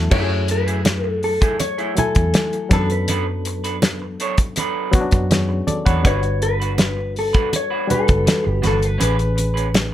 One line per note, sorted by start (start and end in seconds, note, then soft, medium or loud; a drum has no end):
0.00 0.12 F#3 medium
0.00 0.12 A3 medium
0.00 0.13 E4 medium
0.00 0.14 A4 medium
0.11 1.38 F#2 loud
0.11 1.32 F#3 medium
0.11 0.31 A3 medium
0.11 1.33 A3 soft
0.11 0.30 E4 medium
0.11 1.33 E4 medium
0.11 0.20 F#4 medium
0.11 0.28 G#4 medium
0.11 0.50 C#5 medium
0.11 kick loud
0.11 crash medium
0.11 muted conga medium
0.22 1.38 G#4 medium
0.29 muted clean electric guitar stroke soft
0.48 1.06 B4 medium
0.48 muted clean electric guitar stroke soft
0.48 closed hi-hat medium
0.67 0.79 A3 soft
0.67 0.79 E4 soft
0.67 0.79 G#4 medium
0.67 closed hi-hat soft
0.85 muted clean electric guitar stroke soft
0.85 snare loud
0.85 closed hi-hat medium
0.85 high conga medium
1.04 1.24 A4 medium
1.04 muted clean electric guitar stroke soft
1.23 1.60 A4 medium
1.23 open hi-hat soft
1.41 1.57 A3 medium
1.41 1.57 E4 medium
1.41 1.56 G#4 medium
1.41 kick medium
1.41 closed hi-hat medium
1.60 1.98 C#5 medium
1.60 muted clean electric guitar stroke soft
1.60 closed hi-hat medium
1.60 muted conga medium
1.78 1.94 A3 medium
1.78 1.93 E4 medium
1.78 1.93 G#4 medium
1.78 closed hi-hat soft
1.95 2.68 F#3 medium
1.95 2.71 A3 medium
1.95 2.72 E4 medium
1.95 2.72 A4 medium
1.95 2.72 G#5 medium
1.95 muted clean electric guitar stroke soft
1.95 muted fingered electric bass stroke soft
1.95 closed hi-hat medium
1.95 muted conga soft
1.95 low conga medium
2.15 2.32 E2 medium
2.15 muted clean electric guitar stroke soft
2.15 kick medium
2.15 closed hi-hat soft
2.34 muted clean electric guitar stroke soft
2.34 snare loud
2.34 closed hi-hat medium
2.34 high conga medium
2.53 muted clean electric guitar stroke soft
2.53 closed hi-hat soft
2.69 4.15 F#2 medium
2.69 3.91 F#3 medium
2.69 3.92 B3 medium
2.69 2.86 D4 medium
2.69 3.92 D4 medium
2.69 2.87 A4 medium
2.69 2.91 A4 medium
2.69 3.93 A4 medium
2.69 kick loud
2.69 snare soft
2.69 closed hi-hat medium
2.69 high conga medium
2.73 2.87 B4 medium
2.90 3.98 B4 medium
2.90 muted clean electric guitar stroke soft
2.90 closed hi-hat soft
3.08 3.23 D4 medium
3.08 3.24 A4 medium
3.08 3.24 B4 medium
3.08 closed hi-hat loud
3.08 muted conga medium
3.27 muted clean electric guitar stroke soft
3.45 muted clean electric guitar stroke soft
3.45 closed hi-hat medium
3.64 3.76 D4 soft
3.64 3.76 A4 soft
3.64 3.76 B4 soft
3.64 closed hi-hat medium
3.82 snare loud
3.82 closed hi-hat medium
3.82 high conga medium
4.02 muted clean electric guitar stroke soft
4.20 4.35 D4 medium
4.20 4.35 A4 medium
4.20 4.35 C#5 medium
4.20 closed hi-hat medium
4.38 muted clean electric guitar stroke soft
4.38 kick medium
4.38 closed hi-hat medium
4.56 4.91 D4 medium
4.56 4.92 A4 medium
4.56 4.92 B4 medium
4.56 closed hi-hat medium
4.56 muted conga soft
4.91 5.83 F#3 medium
4.91 5.84 B3 medium
4.91 5.00 C#4 medium
4.91 5.85 F#4 medium
4.91 muted clean electric guitar stroke soft
4.91 muted fingered electric bass stroke soft
4.91 kick loud
4.91 closed hi-hat medium
4.91 muted conga soft
5.01 5.88 D4 medium
5.11 5.61 F#2 medium
5.11 muted clean electric guitar stroke soft
5.11 kick medium
5.11 closed hi-hat soft
5.30 5.66 G#4 soft
5.30 5.66 C#5 medium
5.30 muted clean electric guitar stroke soft
5.30 snare loud
5.30 closed hi-hat medium
5.30 high conga medium
5.49 muted clean electric guitar stroke soft
5.67 5.85 A4 medium
5.67 5.85 D5 medium
5.67 muted fingered electric bass stroke soft
5.67 closed hi-hat medium
5.67 high conga medium
5.86 6.03 E2 medium
5.86 6.02 D4 medium
5.86 6.01 A4 medium
5.86 6.01 B4 medium
5.86 6.21 C#5 medium
5.86 6.21 F#5 medium
5.86 kick medium
5.86 closed hi-hat medium
6.02 7.31 G1 medium
6.02 7.24 G3 medium
6.02 7.25 D4 medium
6.02 6.19 D4 medium
6.02 6.20 F#4 medium
6.02 7.26 F#4 medium
6.02 6.20 B4 medium
6.02 7.26 B4 medium
6.02 kick loud
6.02 closed hi-hat medium
6.02 muted conga medium
6.07 6.41 C#5 medium
6.22 muted clean electric guitar stroke soft
6.22 closed hi-hat soft
6.42 7.12 B4 loud
6.42 muted clean electric guitar stroke soft
6.42 closed hi-hat medium
6.60 6.73 D4 soft
6.60 6.72 F#4 soft
6.60 6.72 B4 soft
6.60 closed hi-hat medium
6.78 muted clean electric guitar stroke soft
6.78 snare loud
6.78 closed hi-hat medium
6.78 high conga medium
6.97 muted clean electric guitar stroke soft
7.16 7.56 A4 medium
7.16 open hi-hat soft
7.33 7.50 D4 medium
7.33 7.49 F#4 medium
7.33 7.49 B4 medium
7.33 kick medium
7.33 closed hi-hat medium
7.53 7.93 C#5 loud
7.53 muted clean electric guitar stroke soft
7.53 closed hi-hat medium
7.53 muted conga medium
7.70 7.87 D4 medium
7.70 7.86 F#4 medium
7.70 7.86 B4 medium
7.88 8.80 G3 medium
7.88 8.80 D4 medium
7.88 8.81 F#4 medium
7.88 8.81 B4 medium
7.88 muted clean electric guitar stroke soft
7.88 muted fingered electric bass stroke soft
7.88 closed hi-hat medium
7.88 muted conga soft
7.88 low conga medium
7.94 8.49 A4 medium
8.07 8.25 F#1 medium
8.07 muted clean electric guitar stroke soft
8.07 kick medium
8.07 closed hi-hat soft
8.25 muted clean electric guitar stroke soft
8.25 snare loud
8.25 closed hi-hat medium
8.25 high conga medium
8.44 8.62 G1 medium
8.44 muted clean electric guitar stroke soft
8.49 8.66 G4 medium
8.62 8.97 G1 medium
8.62 8.78 D4 medium
8.62 8.78 F#4 medium
8.62 8.79 B4 medium
8.62 snare soft
8.62 closed hi-hat medium
8.62 high conga medium
8.67 8.85 A4 medium
8.80 muted clean electric guitar stroke soft
8.80 closed hi-hat medium
8.85 9.94 B4 medium
8.98 9.94 A1 loud
8.98 9.94 A3 medium
8.98 9.15 C#4 medium
8.98 9.94 C#4 medium
8.98 9.15 G#4 medium
8.98 9.94 G#4 medium
8.98 9.16 B4 medium
8.98 closed hi-hat medium
8.98 muted conga medium
9.03 9.94 B4 medium
9.18 muted clean electric guitar stroke soft
9.18 closed hi-hat soft
9.36 muted clean electric guitar stroke soft
9.36 closed hi-hat medium
9.36 muted conga soft
9.54 9.68 C#4 soft
9.54 9.68 G#4 soft
9.54 9.67 B4 soft
9.54 closed hi-hat soft
9.74 snare medium
9.74 closed hi-hat medium
9.74 high conga medium